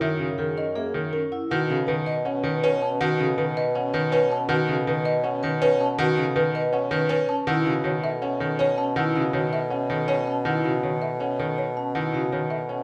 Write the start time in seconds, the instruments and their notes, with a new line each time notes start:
Already playing: bassoon F#2
0.01 grand piano D#3, vibraphone F#4, marimba E5
0.19 grand piano C#3
0.38 grand piano D#3, vibraphone G#4, marimba A#4
0.57 vibraphone C#4, marimba D#5
0.76 grand piano A#3, vibraphone G#4, marimba E5
0.94 grand piano D#3
1.13 vibraphone C#4, marimba A#4
1.32 vibraphone E4, marimba F#5
1.51 bassoon B2, grand piano D#3, vibraphone F#4, marimba F#5
1.70 grand piano C#3, vibraphone A4
1.87 grand piano D#3, marimba B4
2.06 vibraphone B4, marimba D#5
2.25 grand piano C#4, vibraphone C#4, marimba F#5
2.43 grand piano D#3, vibraphone B4
2.63 grand piano C#4, marimba B4
2.82 vibraphone C#4, marimba A5
3.01 grand piano D#3, vibraphone F#4, marimba F#5
3.19 grand piano C#3, vibraphone A4
3.38 grand piano D#3, marimba B4
3.57 vibraphone B4, marimba D#5
3.75 vibraphone C#4, grand piano C#4, marimba F#5
3.94 grand piano D#3, vibraphone B4
4.12 grand piano C#4, marimba B4
4.30 vibraphone C#4, marimba A5
4.49 grand piano D#3, vibraphone F#4, marimba F#5
4.68 grand piano C#3, vibraphone A4
4.87 grand piano D#3, marimba B4
5.05 vibraphone B4, marimba D#5
5.24 grand piano C#4, vibraphone C#4, marimba F#5
5.43 grand piano D#3, vibraphone B4
5.62 grand piano C#4, marimba B4
5.81 vibraphone C#4, marimba A5
5.99 grand piano D#3, vibraphone F#4, marimba F#5
6.17 grand piano C#3, vibraphone A4
6.36 grand piano D#3, marimba B4
6.55 vibraphone B4, marimba D#5
6.73 grand piano C#4, vibraphone C#4, marimba F#5
6.91 grand piano D#3, vibraphone B4
7.09 grand piano C#4, marimba B4
7.29 vibraphone C#4, marimba A5
7.47 bassoon B2, grand piano D#3, vibraphone E4, marimba F#5
7.65 grand piano C#3, vibraphone F#4
7.84 grand piano D#3, marimba C#5
8.04 vibraphone A4, marimba E5
8.22 grand piano C#4, vibraphone C#4, marimba F#5
8.40 grand piano D#3, vibraphone A4
8.59 grand piano C#4, marimba C#5
8.78 vibraphone C#4, marimba A5
8.96 grand piano D#3, vibraphone E4, marimba F#5
9.15 grand piano C#3, vibraphone F#4
9.33 grand piano D#3, marimba C#5
9.53 vibraphone A4, marimba E5
9.70 grand piano C#4, vibraphone C#4, marimba F#5
9.90 grand piano D#3, vibraphone A4
10.08 grand piano C#4, marimba C#5
10.27 vibraphone C#4, marimba A5
10.45 grand piano D#3, vibraphone E4, marimba F#5
10.64 grand piano C#3, vibraphone F#4
10.83 grand piano D#3, marimba C#5
11.02 vibraphone A4, marimba E5
11.20 vibraphone C#4, grand piano C#4, marimba F#5
11.39 grand piano D#3, vibraphone A4
11.58 marimba C#5
11.77 vibraphone C#4, marimba A5
11.95 grand piano D#3, vibraphone E4, marimba F#5
12.13 grand piano C#3, vibraphone F#4
12.32 grand piano D#3, marimba C#5
12.50 vibraphone A4, marimba E5
12.69 grand piano C#4, vibraphone C#4, marimba F#5